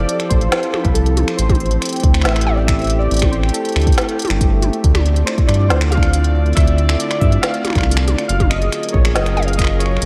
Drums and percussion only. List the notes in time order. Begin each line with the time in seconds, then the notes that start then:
0.09 closed hi-hat
0.20 finger snap, closed hi-hat
0.31 kick, closed hi-hat
0.41 closed hi-hat
0.52 finger snap, snare, closed hi-hat
0.63 closed hi-hat
0.74 finger snap, high tom
0.85 kick, closed hi-hat
0.95 closed hi-hat
1.06 closed hi-hat
1.17 closed hi-hat, high tom
1.28 finger snap, closed hi-hat
1.39 closed hi-hat
1.50 kick, closed hi-hat, high tom
1.55 closed hi-hat
1.60 closed hi-hat
1.66 closed hi-hat
1.71 closed hi-hat
1.82 finger snap, closed hi-hat
1.85 closed hi-hat
1.89 closed hi-hat
1.93 closed hi-hat
1.96 closed hi-hat
2.00 kick, closed hi-hat
2.04 closed hi-hat
2.14 finger snap, closed hi-hat
2.22 finger snap, snare, closed hi-hat
2.29 finger snap
2.36 finger snap, closed hi-hat
2.41 closed hi-hat
2.47 high tom
2.68 finger snap, kick, closed hi-hat
2.79 closed hi-hat
2.82 closed hi-hat
2.84 closed hi-hat
2.87 closed hi-hat
2.90 closed hi-hat
3.11 closed hi-hat
3.14 closed hi-hat
3.17 closed hi-hat
3.19 finger snap, kick, closed hi-hat, high tom
3.33 closed hi-hat
3.43 finger snap
3.49 closed hi-hat
3.54 closed hi-hat
3.65 closed hi-hat
3.69 closed hi-hat
3.72 finger snap, closed hi-hat
3.76 closed hi-hat
3.80 closed hi-hat
3.81 closed hi-hat
3.83 kick, closed hi-hat
3.87 closed hi-hat
3.92 closed hi-hat
3.94 finger snap, snare, closed hi-hat
3.98 closed hi-hat
4.01 closed hi-hat
4.09 closed hi-hat
4.19 closed hi-hat
4.22 closed hi-hat, high tom
4.27 finger snap, closed hi-hat
4.30 closed hi-hat
4.41 kick, closed hi-hat
4.62 closed hi-hat, high tom
4.73 closed hi-hat
4.84 kick, closed hi-hat
4.95 finger snap, closed hi-hat, high tom
5.06 closed hi-hat
5.16 closed hi-hat
5.27 finger snap, closed hi-hat
5.38 kick, closed hi-hat
5.49 finger snap, closed hi-hat
5.54 closed hi-hat
5.70 snare, closed hi-hat
5.81 finger snap, closed hi-hat
5.92 closed hi-hat, high tom
5.97 kick
6.03 finger snap, closed hi-hat
6.13 closed hi-hat
6.24 closed hi-hat
6.46 closed hi-hat
6.53 finger snap, closed hi-hat
6.57 kick, closed hi-hat
6.60 closed hi-hat
6.67 closed hi-hat
6.78 closed hi-hat
6.89 finger snap, closed hi-hat
7.00 closed hi-hat
7.11 finger snap, closed hi-hat
7.21 kick, closed hi-hat
7.32 closed hi-hat
7.43 finger snap, snare, closed hi-hat
7.54 closed hi-hat
7.65 finger snap, closed hi-hat, high tom
7.67 finger snap
7.70 finger snap, high tom
7.73 finger snap
7.75 finger snap, kick, closed hi-hat, high tom
7.78 finger snap
7.81 finger snap, high tom
7.83 finger snap
7.91 closed hi-hat
7.97 finger snap, closed hi-hat
8.08 closed hi-hat, high tom
8.18 finger snap, closed hi-hat
8.29 closed hi-hat
8.40 kick, closed hi-hat, high tom
8.51 finger snap, closed hi-hat
8.62 closed hi-hat
8.72 finger snap, closed hi-hat
8.83 closed hi-hat
8.89 closed hi-hat
8.94 kick
9.05 finger snap, closed hi-hat
9.16 snare, closed hi-hat
9.26 finger snap, closed hi-hat
9.37 closed hi-hat, high tom
9.43 closed hi-hat
9.48 closed hi-hat
9.53 closed hi-hat
9.59 finger snap, kick, closed hi-hat
9.62 finger snap
9.64 finger snap
9.67 finger snap
9.80 finger snap, closed hi-hat
9.86 finger snap
9.97 finger snap
10.02 closed hi-hat